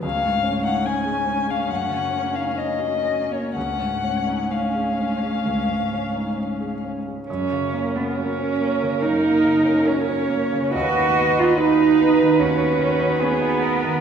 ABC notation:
X:1
M:4/4
L:1/16
Q:1/4=69
K:F#
V:1 name="Violin"
e3 f g3 e f3 e d3 c | f4 e8- e2 z2 | z8 A4 c4 | d4 B4 F4 G2 A2 |]
V:2 name="Viola"
C16 | C12- C3 z | A16 | B16 |]
V:3 name="Cello"
G,8 A,8 | G,12- G,3 z | C3 B, C4 D4 C4 | F3 E D4 C4 B,4 |]
V:4 name="Grand piano"
C,, G,, C D C G C G, F,, C, C D C F C A, | C,, G,, C D C G C G, C,, G,, C D C G C G, | F,, C, A, C F C A, C, F,, A, C, C F C A, C, | D,, D, B, D F D B, D, D,, B, D, D F D B, D, |]